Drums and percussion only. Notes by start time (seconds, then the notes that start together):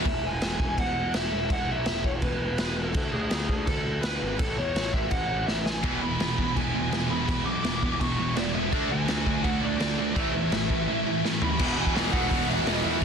0.05 kick, crash
0.42 snare, crash
0.60 kick
0.78 kick, crash
1.14 snare, crash
1.50 kick, crash
1.86 snare, crash
2.04 kick
2.22 kick, crash
2.58 snare, crash
2.94 kick, crash
3.31 snare, crash
3.49 kick
3.67 kick, crash
4.03 snare, crash
4.39 kick, crash
4.76 snare, crash
4.94 kick
5.11 kick, crash
5.48 snare
5.66 snare
5.83 kick, crash
6.20 snare, crash
6.38 kick
6.56 kick, crash
6.92 snare, crash
7.29 kick, crash
7.64 snare, crash
7.83 kick
8.01 kick, crash
8.36 snare, crash
8.73 kick, crash
9.08 snare, crash
9.26 kick
9.44 kick, crash
9.80 snare, crash
10.16 kick, crash
10.52 snare, crash
10.70 kick
11.25 snare
11.42 floor tom
11.59 kick, crash
11.87 kick
11.96 snare, open hi-hat
12.13 kick
12.31 kick, open hi-hat
12.67 snare, open hi-hat
13.02 open hi-hat